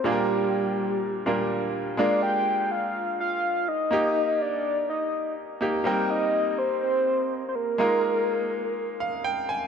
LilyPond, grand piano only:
\new Staff \with { instrumentName = "Grand piano" } { \time 4/4 \key bes \mixolydian \tempo 4 = 124 << { r1 | r1 | r1 | r1 |
r2 r8 f''8 g''8 aes''8 | } \\ { <bes, g bes d' f' aes' bes'>2~ <bes, g bes d' f' aes' bes'>8 <bes, g bes d' f' bes'>4. | <aes bes d' f' bes'>1 | <bes ees' g'>2.~ <bes ees' g'>8 <bes ees' g'>8 | <g bes c' ees' bes'>1 |
<aes bes ees' f' bes'>1 | } >> }